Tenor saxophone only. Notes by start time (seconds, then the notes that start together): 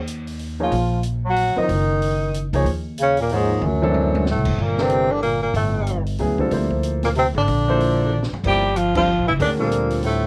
0.63 F4
1.30 F#4
1.63 D#4
3.03 C#4
3.22 A#3
3.35 G#3
3.66 F#3
4.31 A3
4.63 A#3
4.82 C4
5.12 D4
5.23 A#3
5.43 A#3
5.56 A3
7.05 A#3
7.19 C4
7.38 D4
8.47 G4
8.77 F4
8.98 F4
9.28 E4
9.42 D4
9.60 A#3
10.06 A3